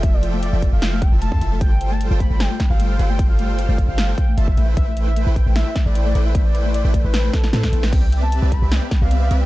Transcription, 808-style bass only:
X:1
M:4/4
L:1/16
Q:1/4=152
K:Am
V:1 name="808-style bass" clef=bass
F,,,4- F,,, F,,,2 F,,,4 F,,,2 F,, F,,,2 | G,,,4- G,,, G,,,2 G,,,2 z2 G,,,3 G,,,2- | G,,,4- G,,, G,,,2 G,,,3 z2 G,,,2 A,,,2 | A,,,4- A,,, A,,,2 A,,,2 z2 A,,,3 A,,,2- |
A,,,4- A,,, A,,,2 A,,,3 z2 A,,2 A,,,2 | C,,4- C,, C,,2 C,,2 z2 C,,3 C,,2 |]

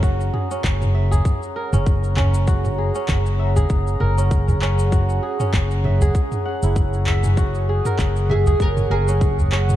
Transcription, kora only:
X:1
M:4/4
L:1/16
Q:"Swing 16ths" 1/4=98
K:F#mix
V:1 name="Kora"
F2 G C3 e G3 A C3 C z | F2 G C3 e G3 A C3 C z | F2 G C3 e G3 f E z2 e z | F2 G A3 e G3 A C3 C z |]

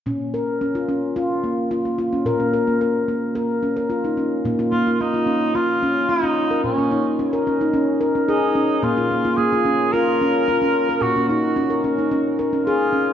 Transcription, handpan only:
X:1
M:4/4
L:1/16
Q:1/4=110
K:Bbm
V:1 name="Handpan"
D2 B2 D F D2 F2 B,2 F B, F D | B D B B, B2 B,2 B2 D B F E D2 | B, F B, F B, F D2 F2 D2 F D2 B- | B D E2 D B D E D2 B D A2 D2 |
B, F B, F B, F D2 F2 D2 F D2 B- | B D E2 D B D E D2 B D A2 D2 |]
V:2 name="Handpan" clef=bass
B,,16 | B,,16 | B,,16 | B,,16 |
B,,16 | B,,16 |]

